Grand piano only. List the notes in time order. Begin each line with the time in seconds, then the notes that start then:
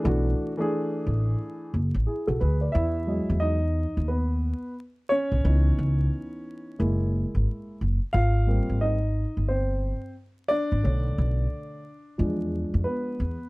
0.03 E3 A3 D4 F#4
0.57 E3 A3 D4 G#4
2.07 E4 G#4
2.27 F#4 A4
2.40 G#4 B4
2.61 B4 D5
2.72 E4 E5
3.07 F#3 G#3 D#5
3.40 D#4 D#5
4.08 B3 B4
5.09 C#4 C#5
5.44 E3 B3 D#4
6.79 G#3 A#3 E4
8.13 F4 F5
8.47 G3 A#3 C4
8.81 D#4 D#5
9.48 C4 C5
10.48 D4 D5
10.83 D3 A3 C#5
12.18 F3 G#3 D4
12.84 B3 B4